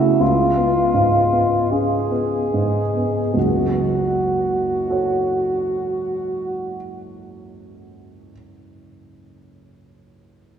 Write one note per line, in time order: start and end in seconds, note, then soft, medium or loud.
0.00 0.16 C#2 medium
0.00 0.23 C#3 soft
0.00 0.24 A3 soft
0.00 0.23 B3 soft
0.00 0.22 E4 medium
0.20 3.31 C#2 soft
0.20 1.73 F4 medium
0.57 1.17 B3 soft
0.94 1.55 G#2 soft
1.32 1.95 B3 soft
1.71 2.11 C#4 soft
1.71 3.33 G#4 medium
2.11 2.79 B3 soft
2.54 3.20 G#2 soft
2.96 3.35 B3 soft
3.34 6.76 F#1 soft
3.34 6.76 C#2 soft
3.34 6.76 F#4 soft
4.88 8.30 F#4 soft
4.88 8.32 A4 soft
4.88 8.34 C#5 soft